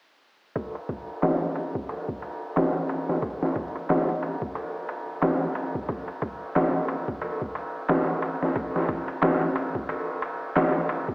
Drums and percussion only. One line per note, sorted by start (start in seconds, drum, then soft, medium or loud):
0.56 kick medium
0.56 ride medium
0.75 ride soft
0.89 kick medium
0.89 ride medium
1.22 snare loud
1.22 ride medium
1.55 ride medium
1.75 kick medium
1.89 ride medium
2.09 kick medium
2.22 ride medium
2.56 snare loud
2.56 ride medium
2.89 ride medium
3.09 snare soft
3.22 kick medium
3.22 ride medium
3.43 snare soft
3.56 kick medium
3.56 ride medium
3.75 ride soft
3.89 snare loud
3.89 ride medium
4.09 ride soft
4.23 ride medium
4.42 kick medium
4.55 ride medium
4.89 ride medium
5.22 snare medium
5.22 ride medium
5.55 ride medium
5.75 kick medium
5.89 kick medium
5.89 ride medium
6.08 ride soft
6.22 kick medium
6.22 ride medium
6.55 snare loud
6.55 ride medium
6.88 ride medium
7.08 kick medium
7.21 ride medium
7.42 kick medium
7.55 ride medium
7.89 snare loud
7.89 ride medium
8.22 ride medium
8.43 snare soft
8.56 kick medium
8.56 ride medium
8.76 snare soft
8.89 kick medium
8.89 ride medium
9.08 ride soft
9.22 snare loud
9.22 ride medium
9.41 ride soft
9.56 ride medium
9.75 kick medium
9.89 ride medium
10.22 ride medium
10.56 snare loud
10.56 ride medium
10.89 ride medium
11.09 kick medium